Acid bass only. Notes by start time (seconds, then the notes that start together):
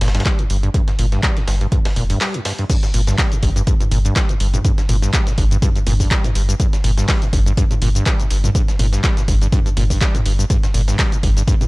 0.01 A#2
0.15 G2
0.26 G3
0.39 G2
0.50 G2
0.63 G2
0.74 G2
0.88 G2
0.99 A#2
1.12 G2
1.23 G3
1.37 G2
1.48 G2
1.61 G2
1.72 G2
1.85 G2
1.96 A#2
2.10 G2
2.21 G3
2.34 G2
2.45 G2
2.59 G2
2.69 G2
2.83 G2
2.94 A#2
3.07 G2
3.18 G3
3.32 G2
3.43 G2
3.56 G2
3.67 G2
3.80 G2
3.91 A#2
4.05 G2
4.16 G3
4.29 G2
4.40 G2
4.54 G2
4.64 G2
4.78 G2
4.89 A#2
5.02 G2
5.13 G3
5.27 G2
5.38 G2
5.51 G2
5.62 G2
5.76 G2
5.87 A#2
6.00 G2
6.11 G3
6.24 G2
6.35 G2
6.49 G2
6.60 G2
6.73 G2
6.84 A#2
6.98 G2
7.09 G3
7.22 G2
7.33 G2
7.46 G2
7.57 G2
7.71 G2
7.82 A#2
7.95 G2
8.06 G3
8.20 G2
8.30 G2
8.44 G2
8.55 G2
8.68 G2
8.79 A#2
8.93 G2
9.04 G3
9.17 G2
9.28 G2
9.41 G2
9.52 G2
9.66 G2
9.77 A#2
9.90 G2
10.01 G3
10.15 G2
10.25 G2
10.39 G2
10.50 G2
10.63 G2
10.74 A#2
10.88 G2
10.99 G3
11.12 G2
11.23 G2
11.36 G2
11.47 G2
11.61 G2